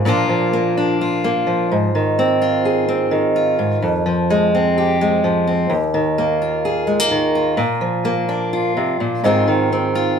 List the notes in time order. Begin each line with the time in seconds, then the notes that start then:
0.05 A#2 F3 A#3 D4 F4
0.29 F3
0.53 A#3
0.77 D4
1.01 F4
1.24 A#3
1.47 F3
1.72 G#2
1.95 D#3
2.19 C4
2.42 F4
2.65 G#4
2.89 C4
3.11 D#3
3.36 F4
3.59 G#2
3.82 F2
4.06 F3
4.30 G#3
4.55 C4
4.78 G4
5.01 G#3
5.24 F3
5.47 C4
5.70 D#2
5.94 D#3
6.18 A#3
6.42 F4
6.65 G#4
6.87 G#3
7.00 A#3
7.11 D#3
7.35 F4
7.57 A#2
7.81 F3
8.05 A#3
8.29 D4
8.53 F4
8.77 C3
9.00 A#2
9.24 G#2 D#3 C4 F4 G#4
9.48 D#3
9.72 C4
9.95 F4